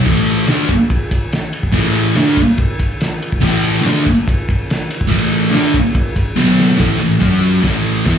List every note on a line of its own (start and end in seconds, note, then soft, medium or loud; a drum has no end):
0.05 0.47 A2 medium
0.05 0.47 E3 medium
0.05 0.47 A3 loud
0.05 kick loud
0.05 crash loud
0.27 ride medium
0.47 0.68 D3 loud
0.47 0.68 A3 loud
0.47 0.69 D4 loud
0.47 snare loud
0.47 ride loud
0.69 kick medium
0.69 ride medium
0.90 kick loud
0.90 ride loud
1.11 kick medium
1.11 ride medium
1.32 snare loud
1.32 ride loud
1.53 ride medium
1.63 kick medium
1.72 2.15 A2 loud
1.72 2.15 E3 loud
1.72 2.15 A3 loud
1.72 kick loud
1.72 ride loud
1.95 ride medium
2.15 2.36 D3 loud
2.15 2.37 A3 loud
2.15 2.37 D4 loud
2.15 snare loud
2.15 ride loud
2.36 kick medium
2.36 ride medium
2.58 kick loud
2.58 ride loud
2.80 kick medium
2.80 ride medium
3.01 snare loud
3.01 ride loud
3.22 ride medium
3.32 kick medium
3.41 3.81 A2 loud
3.41 3.82 E3 loud
3.41 3.81 A3 loud
3.41 kick loud
3.41 crash loud
3.64 ride medium
3.81 4.03 D3 loud
3.81 4.04 A3 loud
3.81 4.04 D4 loud
3.86 snare loud
3.86 ride loud
4.06 kick medium
4.06 ride medium
4.28 kick loud
4.28 ride loud
4.49 kick medium
4.49 ride medium
4.70 snare loud
4.70 ride loud
4.91 ride medium
5.01 kick medium
5.09 5.50 A2 loud
5.09 5.51 E3 loud
5.09 5.50 A3 loud
5.09 kick loud
5.09 ride loud
5.33 ride medium
5.50 5.72 D3 medium
5.50 5.73 A3 loud
5.50 5.73 D4 loud
5.50 ride loud
5.55 snare loud
5.74 kick medium
5.74 ride medium
5.95 kick loud
5.95 ride loud
6.16 kick medium
6.16 ride medium
6.36 6.77 B2 medium
6.36 6.77 F#3 loud
6.36 6.78 B3 loud
6.36 snare medium
6.60 snare loud
6.71 snare medium
6.77 6.98 A2 medium
6.77 6.97 E3 medium
6.77 6.99 A3 medium
6.77 kick loud
6.77 snare loud
6.77 ride medium
6.99 7.16 A2 medium
6.99 7.16 E3 medium
6.99 ride medium
7.19 7.62 F#3 medium
7.19 7.62 C#4 medium
7.19 7.63 F#4 loud
7.19 kick loud
7.19 snare loud
7.19 ride loud
7.44 ride medium
7.62 8.04 A2 medium
7.62 8.04 E3 medium
7.62 8.06 A3 medium
7.62 kick loud
7.62 snare loud
7.62 ride medium
7.86 ride medium
8.05 8.18 E3 medium
8.05 8.18 B3 medium
8.05 8.18 E4 loud
8.05 kick loud
8.05 snare loud
8.05 ride medium